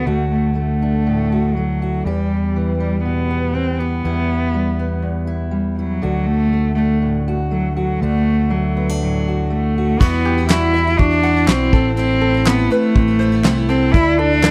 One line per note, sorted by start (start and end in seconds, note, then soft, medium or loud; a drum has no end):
0.06 2.02 D2 medium
0.06 2.05 D3 medium
0.06 0.30 A3 medium
0.06 1.31 F#4 medium
0.31 0.55 A3 medium
0.55 1.55 A3 soft
0.55 1.57 A3 medium
0.82 2.03 D4 soft
1.07 2.06 A2 medium
1.32 1.81 F#4 soft
1.55 2.06 F#3 medium
1.55 2.03 A3 medium
1.82 2.03 F#4 medium
2.04 4.00 E2 medium
2.04 4.03 E2 medium
2.04 2.78 G3 medium
2.04 3.79 G4 medium
2.56 3.54 E3 soft
2.78 3.02 G3 medium
2.78 4.53 G3 soft
3.04 3.55 B2 medium
3.04 3.55 B3 medium
3.31 4.05 B3 soft
3.54 4.01 E3 soft
3.54 3.80 C4 medium
3.79 5.28 B3 medium
3.79 4.02 G4 medium
4.04 5.01 E2 medium
4.04 5.99 E2 medium
4.04 5.26 E4 medium
4.54 5.50 G3 soft
4.79 6.00 B3 soft
5.02 6.02 E2 medium
5.27 5.78 E4 medium
5.51 5.99 G3 medium
5.78 6.28 F#3 medium
5.78 6.00 E4 soft
6.02 7.98 D2 medium
6.02 8.01 D3 medium
6.02 7.27 F#4 medium
6.26 6.74 A3 loud
6.53 7.50 A3 medium
6.75 7.22 A3 medium
6.75 7.99 D4 soft
7.02 8.01 A2 medium
7.28 7.76 F#4 medium
7.51 7.75 F#3 medium
7.51 7.98 A3 medium
7.76 8.01 F#3 medium
7.76 8.03 F#4 medium
8.00 9.96 D2 medium
8.00 10.00 D3 medium
8.00 8.51 A3 loud
8.00 9.26 F#4 medium
8.50 9.00 F#3 medium
8.50 9.49 A3 medium
8.77 8.89 B3 soft
8.89 10.00 D4 soft
9.01 10.00 A2 medium
9.01 9.47 F#3 medium
9.28 9.76 F#4 medium
9.50 9.97 A3 medium
9.50 10.01 A3 medium
9.78 9.98 F#4 medium
10.00 10.95 E2 medium
10.00 10.37 E2 medium
10.00 10.37 B2 medium
10.00 10.38 E3 medium
10.00 10.38 G3 medium
10.00 10.49 B3 medium
10.00 10.37 E4 medium
10.00 10.49 F#4 medium
10.00 10.36 F#4 medium
10.00 kick loud
10.00 crash medium
10.25 11.23 G4 medium
10.38 10.51 E3 soft
10.38 10.50 G3 soft
10.38 10.50 E4 soft
10.38 10.49 F#4 medium
10.49 10.75 E2 medium
10.49 10.75 B2 medium
10.49 10.74 E3 medium
10.49 10.75 G3 medium
10.49 11.00 E4 medium
10.49 10.76 E4 medium
10.49 10.97 F#4 medium
10.49 10.76 F#4 medium
10.49 snare loud
10.49 clap medium
10.74 10.87 E3 medium
10.74 10.87 G3 medium
10.74 10.87 E4 medium
10.74 11.72 E5 medium
10.78 10.86 F#4 medium
10.87 11.12 E3 soft
10.87 11.12 G3 soft
10.87 11.11 E4 soft
10.87 11.10 F#4 soft
10.98 11.45 E2 medium
10.98 11.48 D4 loud
10.98 11.46 F#4 medium
10.98 kick medium
11.11 11.22 E3 soft
11.11 11.23 G3 soft
11.11 11.24 E4 soft
11.11 11.23 F#4 soft
11.23 11.36 E3 medium
11.23 11.36 G3 medium
11.23 11.36 E4 medium
11.23 11.35 F#4 medium
11.23 11.73 F#5 medium
11.36 11.48 E3 soft
11.36 11.49 G3 soft
11.36 11.48 E4 soft
11.36 11.48 F#4 soft
11.47 11.71 B1 medium
11.47 11.73 E2 medium
11.47 11.73 B2 medium
11.47 11.72 E3 medium
11.47 11.73 G3 medium
11.47 11.96 C4 loud
11.47 11.74 E4 medium
11.47 11.72 F#4 medium
11.47 11.74 F#4 medium
11.47 snare medium
11.47 clap medium
11.73 12.67 A1 medium
11.73 11.99 B3 medium
11.73 11.97 C4 medium
11.73 11.98 E4 medium
11.73 12.20 A4 medium
11.73 kick medium
11.97 12.34 A2 medium
11.97 12.34 E3 medium
11.97 12.48 C4 loud
11.97 12.35 C4 medium
11.97 12.33 E4 medium
12.21 13.20 A4 medium
12.34 12.48 B3 soft
12.34 12.47 C4 soft
12.34 12.47 E4 soft
12.46 12.71 A2 medium
12.46 12.69 E3 medium
12.46 12.72 B3 medium
12.46 12.71 B3 medium
12.46 12.94 C4 medium
12.46 12.71 C4 medium
12.46 12.73 E4 medium
12.46 snare loud
12.46 clap medium
12.70 13.08 E3 medium
12.70 13.70 A3 loud
12.70 13.08 B3 medium
12.70 13.09 C4 medium
12.70 13.07 E4 medium
12.70 13.70 B4 medium
12.95 13.42 A1 medium
12.95 13.43 C4 medium
12.95 kick medium
13.08 13.20 B3 soft
13.08 13.19 C4 soft
13.08 13.20 E4 soft
13.19 13.32 E3 medium
13.19 13.32 B3 medium
13.19 13.33 C4 medium
13.19 13.31 E4 medium
13.19 13.94 C5 medium
13.32 13.45 B3 soft
13.32 13.45 C4 soft
13.32 13.45 E4 medium
13.44 13.91 C2 medium
13.44 13.70 A2 medium
13.44 13.67 E3 medium
13.44 13.69 B3 medium
13.44 13.94 C4 medium
13.44 13.69 C4 medium
13.44 13.70 E4 medium
13.44 snare medium
13.44 clap medium
13.69 13.94 E3 medium
13.69 13.95 B3 medium
13.69 13.93 C4 medium
13.69 13.94 C4 medium
13.69 13.95 E4 medium
13.69 13.94 A4 medium
13.92 14.51 D2 medium
13.92 14.31 D3 medium
13.92 14.32 E3 medium
13.92 14.32 D4 medium
13.92 14.20 E4 loud
13.92 14.43 E4 medium
13.92 kick loud
13.96 14.32 A3 medium
13.96 14.31 E4 medium
14.18 14.51 D4 loud
14.18 14.51 A4 medium
14.32 14.43 A3 soft
14.32 14.44 E4 soft
14.43 14.51 D3 medium
14.43 14.51 E3 medium
14.43 14.51 A3 medium
14.43 14.51 D4 medium
14.43 14.51 E4 medium
14.43 snare loud
14.43 clap medium